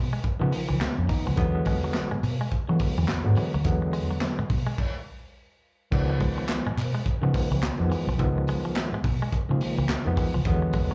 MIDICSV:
0, 0, Header, 1, 7, 480
1, 0, Start_track
1, 0, Tempo, 567108
1, 1167, Time_signature, 4, 2, 24, 8
1, 9262, End_track
2, 0, Start_track
2, 0, Title_t, "Tine electric piano"
2, 0, Program_c, 0, 4
2, 333, Note_on_c, 0, 51, 88
2, 339, Note_on_c, 0, 53, 73
2, 344, Note_on_c, 0, 56, 75
2, 349, Note_on_c, 0, 59, 96
2, 443, Note_off_c, 0, 56, 0
2, 445, Note_off_c, 0, 59, 0
2, 649, Note_off_c, 0, 51, 0
2, 652, Note_off_c, 0, 53, 0
2, 682, Note_on_c, 0, 59, 66
2, 690, Note_on_c, 0, 56, 51
2, 821, Note_off_c, 0, 59, 0
2, 825, Note_off_c, 0, 56, 0
2, 828, Note_on_c, 0, 61, 67
2, 832, Note_on_c, 0, 58, 60
2, 920, Note_off_c, 0, 61, 0
2, 922, Note_on_c, 0, 63, 71
2, 923, Note_off_c, 0, 58, 0
2, 926, Note_on_c, 0, 59, 64
2, 1053, Note_off_c, 0, 59, 0
2, 1061, Note_off_c, 0, 63, 0
2, 1064, Note_on_c, 0, 59, 56
2, 1066, Note_on_c, 0, 56, 45
2, 1152, Note_on_c, 0, 50, 92
2, 1157, Note_off_c, 0, 59, 0
2, 1158, Note_on_c, 0, 54, 85
2, 1164, Note_on_c, 0, 55, 62
2, 1167, Note_on_c, 0, 59, 99
2, 1209, Note_off_c, 0, 56, 0
2, 1219, Note_on_c, 0, 56, 72
2, 1231, Note_off_c, 0, 55, 0
2, 1823, Note_off_c, 0, 50, 0
2, 1825, Note_off_c, 0, 54, 0
2, 1830, Note_off_c, 0, 59, 0
2, 1856, Note_off_c, 0, 56, 0
2, 2269, Note_on_c, 0, 50, 74
2, 2271, Note_on_c, 0, 54, 69
2, 2280, Note_on_c, 0, 56, 67
2, 2285, Note_on_c, 0, 59, 83
2, 2578, Note_off_c, 0, 50, 0
2, 2579, Note_off_c, 0, 54, 0
2, 2583, Note_off_c, 0, 56, 0
2, 2586, Note_off_c, 0, 59, 0
2, 2740, Note_on_c, 0, 50, 83
2, 2747, Note_on_c, 0, 54, 86
2, 2752, Note_on_c, 0, 56, 81
2, 2758, Note_on_c, 0, 59, 93
2, 2989, Note_off_c, 0, 50, 0
2, 2992, Note_off_c, 0, 54, 0
2, 2995, Note_off_c, 0, 56, 0
2, 2998, Note_off_c, 0, 59, 0
2, 3083, Note_on_c, 0, 50, 88
2, 3087, Note_on_c, 0, 54, 80
2, 3092, Note_on_c, 0, 56, 77
2, 3099, Note_on_c, 0, 59, 97
2, 3748, Note_off_c, 0, 50, 0
2, 3750, Note_off_c, 0, 54, 0
2, 3753, Note_off_c, 0, 56, 0
2, 3756, Note_off_c, 0, 59, 0
2, 5006, Note_on_c, 0, 51, 86
2, 5012, Note_on_c, 0, 53, 80
2, 5017, Note_on_c, 0, 56, 74
2, 5023, Note_on_c, 0, 59, 97
2, 5669, Note_off_c, 0, 51, 0
2, 5672, Note_off_c, 0, 53, 0
2, 5675, Note_off_c, 0, 56, 0
2, 5678, Note_off_c, 0, 59, 0
2, 6106, Note_on_c, 0, 51, 79
2, 6111, Note_on_c, 0, 53, 69
2, 6118, Note_on_c, 0, 56, 74
2, 6122, Note_on_c, 0, 59, 92
2, 6416, Note_off_c, 0, 51, 0
2, 6419, Note_off_c, 0, 53, 0
2, 6422, Note_off_c, 0, 56, 0
2, 6424, Note_off_c, 0, 59, 0
2, 6585, Note_on_c, 0, 51, 86
2, 6590, Note_on_c, 0, 53, 81
2, 6595, Note_on_c, 0, 56, 79
2, 6601, Note_on_c, 0, 59, 93
2, 6831, Note_off_c, 0, 51, 0
2, 6834, Note_off_c, 0, 53, 0
2, 6836, Note_off_c, 0, 56, 0
2, 6839, Note_off_c, 0, 59, 0
2, 6924, Note_on_c, 0, 51, 87
2, 6931, Note_on_c, 0, 53, 77
2, 6932, Note_on_c, 0, 56, 81
2, 6941, Note_on_c, 0, 59, 94
2, 7587, Note_off_c, 0, 51, 0
2, 7591, Note_off_c, 0, 53, 0
2, 7592, Note_off_c, 0, 56, 0
2, 7596, Note_off_c, 0, 59, 0
2, 8033, Note_on_c, 0, 51, 83
2, 8038, Note_on_c, 0, 53, 74
2, 8041, Note_on_c, 0, 56, 70
2, 8048, Note_on_c, 0, 58, 81
2, 8339, Note_off_c, 0, 51, 0
2, 8342, Note_off_c, 0, 53, 0
2, 8343, Note_off_c, 0, 56, 0
2, 8347, Note_off_c, 0, 58, 0
2, 8507, Note_on_c, 0, 51, 84
2, 8513, Note_on_c, 0, 53, 73
2, 8518, Note_on_c, 0, 56, 81
2, 8524, Note_on_c, 0, 59, 103
2, 8752, Note_off_c, 0, 51, 0
2, 8754, Note_off_c, 0, 53, 0
2, 8757, Note_off_c, 0, 56, 0
2, 8760, Note_off_c, 0, 59, 0
2, 8845, Note_on_c, 0, 50, 81
2, 8850, Note_on_c, 0, 54, 79
2, 8857, Note_on_c, 0, 56, 80
2, 8861, Note_on_c, 0, 59, 102
2, 9262, Note_off_c, 0, 50, 0
2, 9262, Note_off_c, 0, 54, 0
2, 9262, Note_off_c, 0, 56, 0
2, 9262, Note_off_c, 0, 59, 0
2, 9262, End_track
3, 0, Start_track
3, 0, Title_t, "Clean electric guitar"
3, 0, Program_c, 1, 27
3, 110, Note_on_c, 1, 56, 65
3, 164, Note_off_c, 1, 56, 0
3, 351, Note_on_c, 1, 53, 78
3, 406, Note_off_c, 1, 53, 0
3, 581, Note_on_c, 1, 52, 73
3, 638, Note_off_c, 1, 52, 0
3, 925, Note_on_c, 1, 52, 64
3, 1008, Note_off_c, 1, 52, 0
3, 1074, Note_on_c, 1, 53, 80
3, 1128, Note_off_c, 1, 53, 0
3, 1413, Note_on_c, 1, 56, 73
3, 1494, Note_off_c, 1, 56, 0
3, 1559, Note_on_c, 1, 54, 74
3, 1612, Note_off_c, 1, 54, 0
3, 1789, Note_on_c, 1, 56, 72
3, 1845, Note_off_c, 1, 56, 0
3, 2039, Note_on_c, 1, 56, 76
3, 2092, Note_off_c, 1, 56, 0
3, 2279, Note_on_c, 1, 54, 76
3, 2332, Note_off_c, 1, 54, 0
3, 2522, Note_on_c, 1, 52, 76
3, 2574, Note_off_c, 1, 52, 0
3, 2856, Note_on_c, 1, 52, 79
3, 2936, Note_off_c, 1, 52, 0
3, 2999, Note_on_c, 1, 54, 88
3, 3052, Note_off_c, 1, 54, 0
3, 3328, Note_on_c, 1, 56, 80
3, 3411, Note_off_c, 1, 56, 0
3, 3475, Note_on_c, 1, 54, 75
3, 3529, Note_off_c, 1, 54, 0
3, 3714, Note_on_c, 1, 56, 77
3, 3769, Note_off_c, 1, 56, 0
3, 3949, Note_on_c, 1, 56, 76
3, 4005, Note_off_c, 1, 56, 0
3, 5254, Note_on_c, 1, 56, 72
3, 5335, Note_off_c, 1, 56, 0
3, 5399, Note_on_c, 1, 53, 78
3, 5452, Note_off_c, 1, 53, 0
3, 5642, Note_on_c, 1, 56, 79
3, 5694, Note_off_c, 1, 56, 0
3, 5879, Note_on_c, 1, 56, 77
3, 5932, Note_off_c, 1, 56, 0
3, 6122, Note_on_c, 1, 53, 81
3, 6174, Note_off_c, 1, 53, 0
3, 6363, Note_on_c, 1, 52, 77
3, 6415, Note_off_c, 1, 52, 0
3, 6701, Note_on_c, 1, 52, 75
3, 6779, Note_off_c, 1, 52, 0
3, 6845, Note_on_c, 1, 53, 84
3, 6896, Note_off_c, 1, 53, 0
3, 7185, Note_on_c, 1, 56, 91
3, 7262, Note_off_c, 1, 56, 0
3, 7322, Note_on_c, 1, 53, 76
3, 7374, Note_off_c, 1, 53, 0
3, 7568, Note_on_c, 1, 56, 74
3, 7618, Note_off_c, 1, 56, 0
3, 7806, Note_on_c, 1, 56, 76
3, 7857, Note_off_c, 1, 56, 0
3, 8050, Note_on_c, 1, 53, 72
3, 8099, Note_off_c, 1, 53, 0
3, 8282, Note_on_c, 1, 52, 69
3, 8334, Note_off_c, 1, 52, 0
3, 8614, Note_on_c, 1, 52, 71
3, 8694, Note_off_c, 1, 52, 0
3, 8755, Note_on_c, 1, 53, 80
3, 8808, Note_off_c, 1, 53, 0
3, 9087, Note_on_c, 1, 56, 78
3, 9170, Note_off_c, 1, 56, 0
3, 9234, Note_on_c, 1, 54, 72
3, 9262, Note_off_c, 1, 54, 0
3, 9262, End_track
4, 0, Start_track
4, 0, Title_t, "Fingered electric bass"
4, 0, Program_c, 2, 33
4, 348, Note_on_c, 2, 49, 99
4, 419, Note_off_c, 2, 49, 0
4, 591, Note_on_c, 2, 37, 94
4, 660, Note_off_c, 2, 37, 0
4, 834, Note_on_c, 2, 41, 87
4, 902, Note_off_c, 2, 41, 0
4, 1078, Note_on_c, 2, 37, 88
4, 1145, Note_off_c, 2, 37, 0
4, 1165, Note_on_c, 2, 40, 98
4, 1445, Note_off_c, 2, 40, 0
4, 1890, Note_on_c, 2, 47, 100
4, 1994, Note_off_c, 2, 47, 0
4, 2281, Note_on_c, 2, 52, 96
4, 2348, Note_off_c, 2, 52, 0
4, 2520, Note_on_c, 2, 40, 89
4, 2588, Note_off_c, 2, 40, 0
4, 2760, Note_on_c, 2, 44, 75
4, 2827, Note_off_c, 2, 44, 0
4, 2996, Note_on_c, 2, 38, 82
4, 3065, Note_off_c, 2, 38, 0
4, 3088, Note_on_c, 2, 40, 98
4, 3368, Note_off_c, 2, 40, 0
4, 3808, Note_on_c, 2, 47, 88
4, 3913, Note_off_c, 2, 47, 0
4, 5011, Note_on_c, 2, 37, 103
4, 5290, Note_off_c, 2, 37, 0
4, 5733, Note_on_c, 2, 47, 92
4, 5836, Note_off_c, 2, 47, 0
4, 6114, Note_on_c, 2, 49, 104
4, 6183, Note_off_c, 2, 49, 0
4, 6359, Note_on_c, 2, 37, 90
4, 6427, Note_off_c, 2, 37, 0
4, 6601, Note_on_c, 2, 41, 75
4, 6668, Note_off_c, 2, 41, 0
4, 6833, Note_on_c, 2, 35, 89
4, 6936, Note_off_c, 2, 35, 0
4, 6936, Note_on_c, 2, 37, 105
4, 7212, Note_off_c, 2, 37, 0
4, 7652, Note_on_c, 2, 47, 104
4, 7755, Note_off_c, 2, 47, 0
4, 8040, Note_on_c, 2, 49, 94
4, 8107, Note_off_c, 2, 49, 0
4, 8279, Note_on_c, 2, 37, 85
4, 8346, Note_off_c, 2, 37, 0
4, 8521, Note_on_c, 2, 41, 79
4, 8588, Note_off_c, 2, 41, 0
4, 8764, Note_on_c, 2, 37, 82
4, 8829, Note_off_c, 2, 37, 0
4, 8848, Note_on_c, 2, 40, 108
4, 9127, Note_off_c, 2, 40, 0
4, 9262, End_track
5, 0, Start_track
5, 0, Title_t, "Muted clean electric guitar strokes"
5, 442, Note_on_c, 9, 29, 51
5, 527, Note_off_c, 9, 29, 0
5, 678, Note_on_c, 9, 29, 43
5, 762, Note_off_c, 9, 29, 0
5, 1312, Note_on_c, 9, 29, 46
5, 1396, Note_off_c, 9, 29, 0
5, 1896, Note_on_c, 9, 29, 49
5, 1980, Note_off_c, 9, 29, 0
5, 2384, Note_on_c, 9, 29, 53
5, 2468, Note_off_c, 9, 29, 0
5, 2620, Note_on_c, 9, 29, 46
5, 2704, Note_off_c, 9, 29, 0
5, 3235, Note_on_c, 9, 29, 45
5, 3320, Note_off_c, 9, 29, 0
5, 3808, Note_on_c, 9, 29, 45
5, 3893, Note_off_c, 9, 29, 0
5, 5162, Note_on_c, 9, 29, 45
5, 5247, Note_off_c, 9, 29, 0
5, 5734, Note_on_c, 9, 29, 41
5, 5819, Note_off_c, 9, 29, 0
5, 6227, Note_on_c, 9, 29, 55
5, 6312, Note_off_c, 9, 29, 0
5, 6459, Note_on_c, 9, 29, 48
5, 6544, Note_off_c, 9, 29, 0
5, 7093, Note_on_c, 9, 29, 44
5, 7178, Note_off_c, 9, 29, 0
5, 7662, Note_on_c, 9, 29, 42
5, 7747, Note_off_c, 9, 29, 0
5, 8146, Note_on_c, 9, 29, 49
5, 8230, Note_off_c, 9, 29, 0
5, 8372, Note_on_c, 9, 29, 52
5, 8457, Note_off_c, 9, 29, 0
5, 8991, Note_on_c, 9, 29, 49
5, 9076, Note_off_c, 9, 29, 0
5, 9262, End_track
6, 0, Start_track
6, 0, Title_t, "Muted fingered electric bass strokes"
6, 205, Note_on_c, 9, 29, 42
6, 290, Note_off_c, 9, 29, 0
6, 691, Note_on_c, 9, 29, 40
6, 776, Note_off_c, 9, 29, 0
6, 1794, Note_on_c, 9, 29, 51
6, 1879, Note_off_c, 9, 29, 0
6, 2131, Note_on_c, 9, 29, 46
6, 2216, Note_off_c, 9, 29, 0
6, 2617, Note_on_c, 9, 29, 41
6, 2702, Note_off_c, 9, 29, 0
6, 3715, Note_on_c, 9, 29, 54
6, 3799, Note_off_c, 9, 29, 0
6, 5644, Note_on_c, 9, 29, 52
6, 5728, Note_off_c, 9, 29, 0
6, 5974, Note_on_c, 9, 29, 47
6, 6059, Note_off_c, 9, 29, 0
6, 6458, Note_on_c, 9, 29, 46
6, 6543, Note_off_c, 9, 29, 0
6, 7554, Note_on_c, 9, 29, 48
6, 7638, Note_off_c, 9, 29, 0
6, 7892, Note_on_c, 9, 29, 47
6, 7977, Note_off_c, 9, 29, 0
6, 8374, Note_on_c, 9, 29, 46
6, 8458, Note_off_c, 9, 29, 0
6, 9262, End_track
7, 0, Start_track
7, 0, Title_t, "Drums"
7, 203, Note_on_c, 9, 42, 65
7, 204, Note_on_c, 9, 36, 89
7, 287, Note_off_c, 9, 42, 0
7, 288, Note_off_c, 9, 36, 0
7, 443, Note_on_c, 9, 46, 88
7, 528, Note_off_c, 9, 46, 0
7, 683, Note_on_c, 9, 42, 81
7, 686, Note_on_c, 9, 38, 118
7, 686, Note_on_c, 9, 39, 105
7, 767, Note_off_c, 9, 42, 0
7, 771, Note_off_c, 9, 38, 0
7, 771, Note_off_c, 9, 39, 0
7, 923, Note_on_c, 9, 46, 85
7, 925, Note_on_c, 9, 36, 85
7, 1008, Note_off_c, 9, 46, 0
7, 1010, Note_off_c, 9, 36, 0
7, 1162, Note_on_c, 9, 42, 94
7, 1165, Note_on_c, 9, 36, 110
7, 1246, Note_off_c, 9, 42, 0
7, 1250, Note_off_c, 9, 36, 0
7, 1399, Note_on_c, 9, 46, 73
7, 1405, Note_on_c, 9, 36, 89
7, 1484, Note_off_c, 9, 46, 0
7, 1489, Note_off_c, 9, 36, 0
7, 1645, Note_on_c, 9, 38, 97
7, 1645, Note_on_c, 9, 39, 77
7, 1648, Note_on_c, 9, 42, 81
7, 1729, Note_off_c, 9, 38, 0
7, 1729, Note_off_c, 9, 39, 0
7, 1732, Note_off_c, 9, 42, 0
7, 1890, Note_on_c, 9, 46, 76
7, 1974, Note_off_c, 9, 46, 0
7, 2128, Note_on_c, 9, 42, 70
7, 2130, Note_on_c, 9, 36, 78
7, 2213, Note_off_c, 9, 42, 0
7, 2214, Note_off_c, 9, 36, 0
7, 2365, Note_on_c, 9, 46, 100
7, 2369, Note_on_c, 9, 36, 91
7, 2449, Note_off_c, 9, 46, 0
7, 2454, Note_off_c, 9, 36, 0
7, 2607, Note_on_c, 9, 42, 80
7, 2610, Note_on_c, 9, 38, 127
7, 2610, Note_on_c, 9, 39, 103
7, 2692, Note_off_c, 9, 42, 0
7, 2695, Note_off_c, 9, 38, 0
7, 2695, Note_off_c, 9, 39, 0
7, 2846, Note_on_c, 9, 46, 79
7, 2930, Note_off_c, 9, 46, 0
7, 3085, Note_on_c, 9, 42, 95
7, 3089, Note_on_c, 9, 36, 116
7, 3169, Note_off_c, 9, 42, 0
7, 3173, Note_off_c, 9, 36, 0
7, 3329, Note_on_c, 9, 46, 67
7, 3413, Note_off_c, 9, 46, 0
7, 3565, Note_on_c, 9, 38, 108
7, 3565, Note_on_c, 9, 39, 87
7, 3568, Note_on_c, 9, 42, 70
7, 3650, Note_off_c, 9, 38, 0
7, 3650, Note_off_c, 9, 39, 0
7, 3653, Note_off_c, 9, 42, 0
7, 3808, Note_on_c, 9, 36, 107
7, 3808, Note_on_c, 9, 46, 81
7, 3892, Note_off_c, 9, 46, 0
7, 3893, Note_off_c, 9, 36, 0
7, 4047, Note_on_c, 9, 49, 83
7, 4049, Note_on_c, 9, 36, 98
7, 4132, Note_off_c, 9, 49, 0
7, 4133, Note_off_c, 9, 36, 0
7, 5008, Note_on_c, 9, 49, 88
7, 5011, Note_on_c, 9, 36, 106
7, 5093, Note_off_c, 9, 49, 0
7, 5096, Note_off_c, 9, 36, 0
7, 5251, Note_on_c, 9, 46, 72
7, 5252, Note_on_c, 9, 36, 85
7, 5336, Note_off_c, 9, 46, 0
7, 5337, Note_off_c, 9, 36, 0
7, 5492, Note_on_c, 9, 38, 100
7, 5492, Note_on_c, 9, 39, 95
7, 5496, Note_off_c, 9, 39, 0
7, 5496, Note_on_c, 9, 39, 108
7, 5496, Note_on_c, 9, 42, 83
7, 5577, Note_off_c, 9, 38, 0
7, 5580, Note_off_c, 9, 39, 0
7, 5580, Note_off_c, 9, 42, 0
7, 5737, Note_on_c, 9, 46, 81
7, 5743, Note_on_c, 9, 39, 84
7, 5821, Note_off_c, 9, 46, 0
7, 5827, Note_off_c, 9, 39, 0
7, 5974, Note_on_c, 9, 36, 88
7, 5975, Note_on_c, 9, 42, 68
7, 6059, Note_off_c, 9, 36, 0
7, 6059, Note_off_c, 9, 42, 0
7, 6215, Note_on_c, 9, 36, 93
7, 6217, Note_on_c, 9, 46, 105
7, 6300, Note_off_c, 9, 36, 0
7, 6302, Note_off_c, 9, 46, 0
7, 6454, Note_on_c, 9, 42, 88
7, 6457, Note_on_c, 9, 38, 125
7, 6457, Note_on_c, 9, 39, 95
7, 6463, Note_off_c, 9, 39, 0
7, 6463, Note_on_c, 9, 39, 106
7, 6539, Note_off_c, 9, 42, 0
7, 6542, Note_off_c, 9, 38, 0
7, 6548, Note_off_c, 9, 39, 0
7, 6699, Note_on_c, 9, 46, 76
7, 6783, Note_off_c, 9, 46, 0
7, 6934, Note_on_c, 9, 42, 93
7, 6935, Note_on_c, 9, 36, 118
7, 7019, Note_off_c, 9, 36, 0
7, 7019, Note_off_c, 9, 42, 0
7, 7175, Note_on_c, 9, 46, 69
7, 7260, Note_off_c, 9, 46, 0
7, 7416, Note_on_c, 9, 39, 104
7, 7417, Note_off_c, 9, 39, 0
7, 7417, Note_on_c, 9, 38, 103
7, 7417, Note_on_c, 9, 39, 88
7, 7420, Note_on_c, 9, 42, 76
7, 7502, Note_off_c, 9, 38, 0
7, 7502, Note_off_c, 9, 39, 0
7, 7505, Note_off_c, 9, 42, 0
7, 7653, Note_on_c, 9, 36, 116
7, 7655, Note_on_c, 9, 46, 81
7, 7737, Note_off_c, 9, 36, 0
7, 7739, Note_off_c, 9, 46, 0
7, 7892, Note_on_c, 9, 42, 78
7, 7893, Note_on_c, 9, 36, 83
7, 7977, Note_off_c, 9, 36, 0
7, 7977, Note_off_c, 9, 42, 0
7, 8132, Note_on_c, 9, 46, 89
7, 8217, Note_off_c, 9, 46, 0
7, 8369, Note_on_c, 9, 42, 93
7, 8372, Note_on_c, 9, 38, 118
7, 8372, Note_on_c, 9, 39, 99
7, 8374, Note_off_c, 9, 39, 0
7, 8374, Note_on_c, 9, 39, 111
7, 8454, Note_off_c, 9, 42, 0
7, 8457, Note_off_c, 9, 38, 0
7, 8458, Note_off_c, 9, 39, 0
7, 8608, Note_on_c, 9, 46, 76
7, 8610, Note_on_c, 9, 36, 97
7, 8692, Note_off_c, 9, 46, 0
7, 8694, Note_off_c, 9, 36, 0
7, 8845, Note_on_c, 9, 42, 101
7, 8847, Note_on_c, 9, 36, 109
7, 8929, Note_off_c, 9, 42, 0
7, 8932, Note_off_c, 9, 36, 0
7, 9081, Note_on_c, 9, 46, 74
7, 9087, Note_on_c, 9, 36, 91
7, 9165, Note_off_c, 9, 46, 0
7, 9171, Note_off_c, 9, 36, 0
7, 9262, End_track
0, 0, End_of_file